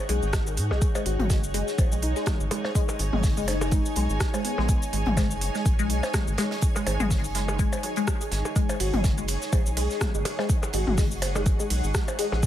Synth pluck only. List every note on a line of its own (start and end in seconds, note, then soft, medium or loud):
0.09 0.12 G#3 loud
0.33 0.36 G#3 medium
0.47 0.50 D#3 medium
0.71 0.76 G#3 medium
0.95 0.99 G#3 loud
1.30 1.36 G#3 medium
1.54 1.59 G#3 loud
1.92 1.97 G#3 medium
2.16 2.20 G#3 loud
2.51 2.57 G#3 medium
2.75 2.79 G#3 loud
3.13 3.18 G#3 medium
3.37 3.41 G#3 loud
3.72 3.78 G#3 medium
3.96 4.00 G#3 loud
4.34 4.39 G#3 medium
4.58 4.61 G#3 loud
4.93 4.99 G#3 medium
5.17 5.21 G#3 loud
5.55 5.60 G#3 medium
5.79 5.82 G#3 loud
6.14 6.20 G#3 medium
6.38 6.42 G#3 loud
6.76 6.81 G#3 medium
7.00 7.03 G#3 loud
7.35 7.41 G#3 medium
7.59 7.63 G#3 loud
7.83 7.90 F#3 medium
7.97 8.00 G#3 loud
8.21 8.24 G#4 medium
8.56 8.60 G#3 loud
8.94 8.97 G#3 medium
9.18 9.21 G#3 loud
9.53 9.57 G#3 medium
9.77 9.81 G#3 loud
10.15 10.18 G#3 medium
10.39 10.42 G#3 loud
10.74 10.78 G#3 medium
10.98 11.02 G#3 loud
11.35 11.39 G#3 medium
11.60 11.63 G#3 loud
11.95 11.99 G#3 medium
12.19 12.23 G#3 loud